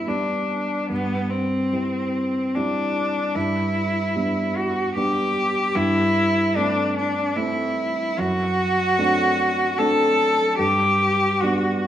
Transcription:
0, 0, Header, 1, 3, 480
1, 0, Start_track
1, 0, Key_signature, 1, "major"
1, 0, Tempo, 821918
1, 529, Time_signature, 3, 2, 24, 8
1, 1491, Tempo, 803213
1, 6291, Tempo, 837989
1, 7027, End_track
2, 0, Start_track
2, 0, Title_t, "Cello"
2, 0, Program_c, 0, 42
2, 42, Note_on_c, 0, 62, 42
2, 522, Note_off_c, 0, 62, 0
2, 525, Note_on_c, 0, 59, 54
2, 764, Note_on_c, 0, 60, 45
2, 773, Note_off_c, 0, 59, 0
2, 1488, Note_on_c, 0, 62, 54
2, 1497, Note_off_c, 0, 60, 0
2, 1966, Note_on_c, 0, 64, 53
2, 1975, Note_off_c, 0, 62, 0
2, 2690, Note_on_c, 0, 66, 49
2, 2699, Note_off_c, 0, 64, 0
2, 2925, Note_off_c, 0, 66, 0
2, 2928, Note_on_c, 0, 67, 58
2, 3402, Note_on_c, 0, 64, 72
2, 3411, Note_off_c, 0, 67, 0
2, 3883, Note_on_c, 0, 62, 61
2, 3892, Note_off_c, 0, 64, 0
2, 4122, Note_off_c, 0, 62, 0
2, 4129, Note_on_c, 0, 62, 52
2, 4366, Note_on_c, 0, 64, 57
2, 4375, Note_off_c, 0, 62, 0
2, 4855, Note_on_c, 0, 66, 81
2, 4864, Note_off_c, 0, 64, 0
2, 5812, Note_on_c, 0, 69, 69
2, 5821, Note_off_c, 0, 66, 0
2, 6286, Note_off_c, 0, 69, 0
2, 6290, Note_on_c, 0, 67, 75
2, 6761, Note_on_c, 0, 66, 60
2, 6769, Note_off_c, 0, 67, 0
2, 7006, Note_off_c, 0, 66, 0
2, 7027, End_track
3, 0, Start_track
3, 0, Title_t, "Grand piano"
3, 0, Program_c, 1, 0
3, 0, Control_c, 1, 64, 127
3, 0, Note_on_c, 1, 43, 38
3, 0, Note_on_c, 1, 55, 28
3, 0, Note_on_c, 1, 59, 24
3, 0, Note_on_c, 1, 62, 30
3, 40, Note_off_c, 1, 55, 0
3, 40, Note_on_c, 1, 55, 28
3, 44, Note_off_c, 1, 59, 0
3, 44, Note_on_c, 1, 59, 28
3, 47, Note_off_c, 1, 62, 0
3, 47, Note_on_c, 1, 62, 31
3, 500, Note_off_c, 1, 55, 0
3, 502, Note_off_c, 1, 59, 0
3, 503, Note_off_c, 1, 62, 0
3, 523, Note_off_c, 1, 43, 0
3, 523, Note_on_c, 1, 43, 39
3, 538, Control_c, 1, 64, 0
3, 649, Control_c, 1, 64, 127
3, 996, Note_off_c, 1, 43, 0
3, 1008, Note_on_c, 1, 55, 28
3, 1011, Note_on_c, 1, 60, 26
3, 1012, Note_on_c, 1, 64, 32
3, 1466, Note_off_c, 1, 55, 0
3, 1467, Note_off_c, 1, 60, 0
3, 1468, Note_off_c, 1, 64, 0
3, 1496, Note_on_c, 1, 60, 31
3, 1497, Note_on_c, 1, 55, 34
3, 1501, Note_on_c, 1, 64, 38
3, 1945, Note_off_c, 1, 60, 0
3, 1946, Note_off_c, 1, 55, 0
3, 1948, Note_off_c, 1, 64, 0
3, 1967, Note_on_c, 1, 43, 44
3, 1979, Control_c, 1, 64, 0
3, 2076, Control_c, 1, 64, 127
3, 2435, Note_off_c, 1, 43, 0
3, 2448, Note_on_c, 1, 55, 32
3, 2454, Note_on_c, 1, 59, 29
3, 2455, Note_on_c, 1, 62, 34
3, 2903, Note_off_c, 1, 55, 0
3, 2906, Note_off_c, 1, 59, 0
3, 2907, Note_off_c, 1, 62, 0
3, 2930, Note_on_c, 1, 59, 33
3, 2931, Note_on_c, 1, 55, 33
3, 2936, Note_on_c, 1, 62, 39
3, 3378, Note_off_c, 1, 55, 0
3, 3378, Note_off_c, 1, 59, 0
3, 3381, Note_off_c, 1, 62, 0
3, 3402, Note_on_c, 1, 43, 52
3, 3409, Control_c, 1, 64, 0
3, 3509, Control_c, 1, 64, 127
3, 3866, Note_off_c, 1, 43, 0
3, 3885, Note_on_c, 1, 57, 36
3, 3888, Note_on_c, 1, 60, 35
3, 4340, Note_off_c, 1, 57, 0
3, 4342, Note_off_c, 1, 60, 0
3, 4365, Note_on_c, 1, 57, 38
3, 4369, Note_on_c, 1, 60, 42
3, 4828, Note_off_c, 1, 57, 0
3, 4830, Note_off_c, 1, 60, 0
3, 4853, Note_on_c, 1, 42, 47
3, 4861, Control_c, 1, 64, 0
3, 4967, Control_c, 1, 64, 127
3, 5314, Note_off_c, 1, 42, 0
3, 5334, Note_on_c, 1, 57, 36
3, 5337, Note_on_c, 1, 60, 38
3, 5339, Note_on_c, 1, 62, 43
3, 5787, Note_off_c, 1, 57, 0
3, 5789, Note_off_c, 1, 60, 0
3, 5790, Note_off_c, 1, 62, 0
3, 5816, Note_on_c, 1, 57, 42
3, 5819, Note_on_c, 1, 60, 38
3, 5822, Note_on_c, 1, 62, 45
3, 6270, Note_off_c, 1, 57, 0
3, 6271, Note_off_c, 1, 60, 0
3, 6273, Note_off_c, 1, 62, 0
3, 6290, Note_on_c, 1, 43, 50
3, 6298, Control_c, 1, 64, 0
3, 6388, Control_c, 1, 64, 127
3, 6753, Note_off_c, 1, 43, 0
3, 6772, Note_on_c, 1, 55, 36
3, 6777, Note_on_c, 1, 59, 37
3, 6778, Note_on_c, 1, 62, 39
3, 7027, Note_off_c, 1, 55, 0
3, 7027, Note_off_c, 1, 59, 0
3, 7027, Note_off_c, 1, 62, 0
3, 7027, End_track
0, 0, End_of_file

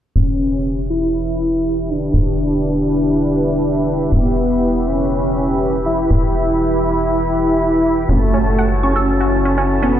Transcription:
0, 0, Header, 1, 6, 480
1, 0, Start_track
1, 0, Tempo, 495868
1, 151, Time_signature, 4, 2, 24, 8
1, 9679, End_track
2, 0, Start_track
2, 0, Title_t, "Analog synth pad"
2, 0, Program_c, 0, 89
2, 151, Note_on_c, 0, 67, 80
2, 151, Note_on_c, 0, 71, 75
2, 151, Note_on_c, 0, 76, 74
2, 151, Note_on_c, 0, 83, 92
2, 7792, Note_off_c, 0, 67, 0
2, 7792, Note_off_c, 0, 71, 0
2, 7792, Note_off_c, 0, 76, 0
2, 7792, Note_off_c, 0, 83, 0
2, 7831, Note_on_c, 0, 66, 84
2, 7831, Note_on_c, 0, 69, 76
2, 7831, Note_on_c, 0, 73, 72
2, 7831, Note_on_c, 0, 81, 88
2, 9679, Note_off_c, 0, 66, 0
2, 9679, Note_off_c, 0, 69, 0
2, 9679, Note_off_c, 0, 73, 0
2, 9679, Note_off_c, 0, 81, 0
2, 9679, End_track
3, 0, Start_track
3, 0, Title_t, "Ambient pad"
3, 0, Program_c, 1, 92
3, 152, Note_on_c, 1, 64, 83
3, 275, Note_on_c, 1, 67, 84
3, 548, Note_on_c, 1, 71, 87
3, 7819, Note_off_c, 1, 64, 0
3, 7831, Note_off_c, 1, 67, 0
3, 7831, Note_on_c, 1, 64, 69
3, 7910, Note_on_c, 1, 69, 71
3, 8438, Note_on_c, 1, 73, 88
3, 9487, Note_off_c, 1, 71, 0
3, 9679, Note_off_c, 1, 64, 0
3, 9679, Note_off_c, 1, 69, 0
3, 9679, Note_off_c, 1, 73, 0
3, 9679, End_track
4, 0, Start_track
4, 0, Title_t, "Analog synth lead"
4, 0, Program_c, 2, 81
4, 151, Note_on_c, 2, 61, 109
4, 775, Note_off_c, 2, 61, 0
4, 871, Note_on_c, 2, 64, 107
4, 1831, Note_on_c, 2, 62, 107
4, 1845, Note_off_c, 2, 64, 0
4, 3990, Note_on_c, 2, 59, 105
4, 4005, Note_off_c, 2, 62, 0
4, 4711, Note_on_c, 2, 61, 101
4, 4725, Note_off_c, 2, 59, 0
4, 5575, Note_off_c, 2, 61, 0
4, 5671, Note_on_c, 2, 64, 106
4, 7831, Note_on_c, 2, 57, 105
4, 7845, Note_off_c, 2, 64, 0
4, 8455, Note_off_c, 2, 57, 0
4, 8551, Note_on_c, 2, 61, 105
4, 9415, Note_off_c, 2, 61, 0
4, 9511, Note_on_c, 2, 59, 108
4, 9679, Note_off_c, 2, 59, 0
4, 9679, End_track
5, 0, Start_track
5, 0, Title_t, "Synth arpeggio sound"
5, 0, Program_c, 3, 84
5, 7831, Note_on_c, 3, 61, 76
5, 7879, Note_off_c, 3, 61, 0
5, 8071, Note_on_c, 3, 61, 99
5, 8100, Note_off_c, 3, 61, 0
5, 8311, Note_on_c, 3, 78, 98
5, 8340, Note_off_c, 3, 78, 0
5, 8551, Note_on_c, 3, 85, 73
5, 8599, Note_off_c, 3, 85, 0
5, 8671, Note_on_c, 3, 69, 102
5, 8700, Note_off_c, 3, 69, 0
5, 8911, Note_on_c, 3, 66, 77
5, 8983, Note_off_c, 3, 66, 0
5, 9151, Note_on_c, 3, 61, 80
5, 9180, Note_off_c, 3, 61, 0
5, 9271, Note_on_c, 3, 61, 80
5, 9319, Note_off_c, 3, 61, 0
5, 9511, Note_on_c, 3, 61, 100
5, 9540, Note_off_c, 3, 61, 0
5, 9679, End_track
6, 0, Start_track
6, 0, Title_t, "Analog synth bass"
6, 0, Program_c, 4, 38
6, 151, Note_on_c, 4, 28, 85
6, 2047, Note_off_c, 4, 28, 0
6, 2071, Note_on_c, 4, 28, 83
6, 3967, Note_off_c, 4, 28, 0
6, 3991, Note_on_c, 4, 28, 83
6, 5887, Note_off_c, 4, 28, 0
6, 5911, Note_on_c, 4, 28, 82
6, 7807, Note_off_c, 4, 28, 0
6, 7831, Note_on_c, 4, 30, 86
6, 9679, Note_off_c, 4, 30, 0
6, 9679, End_track
0, 0, End_of_file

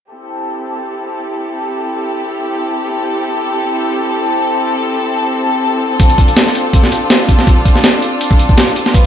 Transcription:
0, 0, Header, 1, 3, 480
1, 0, Start_track
1, 0, Key_signature, 0, "minor"
1, 0, Tempo, 368098
1, 143, Time_signature, 4, 2, 24, 8
1, 11817, End_track
2, 0, Start_track
2, 0, Title_t, "String section"
2, 0, Program_c, 0, 48
2, 142, Note_on_c, 0, 67, 66
2, 145, Note_on_c, 0, 60, 72
2, 146, Note_on_c, 0, 64, 64
2, 147, Note_on_c, 0, 69, 79
2, 7771, Note_off_c, 0, 67, 0
2, 7773, Note_off_c, 0, 64, 0
2, 7822, Note_on_c, 0, 65, 68
2, 7823, Note_on_c, 0, 62, 66
2, 11613, Note_off_c, 0, 69, 0
2, 11661, Note_on_c, 0, 71, 87
2, 11817, Note_off_c, 0, 60, 0
2, 11817, Note_off_c, 0, 62, 0
2, 11817, Note_off_c, 0, 65, 0
2, 11817, Note_off_c, 0, 71, 0
2, 11817, End_track
3, 0, Start_track
3, 0, Title_t, "Drums"
3, 7819, Note_on_c, 9, 42, 82
3, 7820, Note_on_c, 9, 36, 104
3, 7949, Note_off_c, 9, 42, 0
3, 7949, Note_on_c, 9, 42, 40
3, 7951, Note_off_c, 9, 36, 0
3, 8060, Note_off_c, 9, 42, 0
3, 8060, Note_on_c, 9, 42, 61
3, 8061, Note_on_c, 9, 36, 87
3, 8190, Note_off_c, 9, 42, 0
3, 8190, Note_on_c, 9, 42, 42
3, 8191, Note_off_c, 9, 36, 0
3, 8301, Note_off_c, 9, 42, 0
3, 8301, Note_on_c, 9, 38, 105
3, 8301, Note_on_c, 9, 42, 76
3, 8431, Note_off_c, 9, 38, 0
3, 8431, Note_off_c, 9, 42, 0
3, 8432, Note_on_c, 9, 38, 38
3, 8543, Note_on_c, 9, 42, 61
3, 8563, Note_off_c, 9, 38, 0
3, 8673, Note_off_c, 9, 42, 0
3, 8782, Note_on_c, 9, 36, 96
3, 8783, Note_on_c, 9, 42, 78
3, 8912, Note_off_c, 9, 36, 0
3, 8913, Note_off_c, 9, 42, 0
3, 8913, Note_on_c, 9, 38, 53
3, 9023, Note_on_c, 9, 42, 64
3, 9043, Note_off_c, 9, 38, 0
3, 9153, Note_off_c, 9, 42, 0
3, 9261, Note_on_c, 9, 38, 110
3, 9261, Note_on_c, 9, 42, 81
3, 9391, Note_off_c, 9, 38, 0
3, 9391, Note_off_c, 9, 42, 0
3, 9501, Note_on_c, 9, 42, 61
3, 9502, Note_on_c, 9, 36, 85
3, 9632, Note_off_c, 9, 36, 0
3, 9632, Note_off_c, 9, 42, 0
3, 9632, Note_on_c, 9, 38, 45
3, 9742, Note_on_c, 9, 36, 101
3, 9743, Note_on_c, 9, 42, 81
3, 9762, Note_off_c, 9, 38, 0
3, 9873, Note_off_c, 9, 36, 0
3, 9873, Note_off_c, 9, 42, 0
3, 9982, Note_on_c, 9, 36, 86
3, 9982, Note_on_c, 9, 42, 63
3, 10112, Note_off_c, 9, 36, 0
3, 10112, Note_off_c, 9, 42, 0
3, 10112, Note_on_c, 9, 38, 49
3, 10221, Note_off_c, 9, 38, 0
3, 10221, Note_on_c, 9, 38, 109
3, 10221, Note_on_c, 9, 42, 79
3, 10351, Note_off_c, 9, 38, 0
3, 10351, Note_off_c, 9, 42, 0
3, 10462, Note_on_c, 9, 42, 62
3, 10592, Note_off_c, 9, 42, 0
3, 10704, Note_on_c, 9, 42, 80
3, 10833, Note_on_c, 9, 36, 94
3, 10834, Note_off_c, 9, 42, 0
3, 10944, Note_on_c, 9, 42, 63
3, 10963, Note_off_c, 9, 36, 0
3, 11074, Note_off_c, 9, 42, 0
3, 11074, Note_on_c, 9, 36, 92
3, 11184, Note_on_c, 9, 38, 107
3, 11184, Note_on_c, 9, 42, 80
3, 11204, Note_off_c, 9, 36, 0
3, 11314, Note_off_c, 9, 38, 0
3, 11314, Note_off_c, 9, 42, 0
3, 11314, Note_on_c, 9, 42, 39
3, 11425, Note_off_c, 9, 42, 0
3, 11425, Note_on_c, 9, 42, 62
3, 11554, Note_on_c, 9, 38, 50
3, 11555, Note_off_c, 9, 42, 0
3, 11662, Note_on_c, 9, 42, 86
3, 11663, Note_on_c, 9, 36, 102
3, 11684, Note_off_c, 9, 38, 0
3, 11792, Note_off_c, 9, 42, 0
3, 11794, Note_off_c, 9, 36, 0
3, 11817, End_track
0, 0, End_of_file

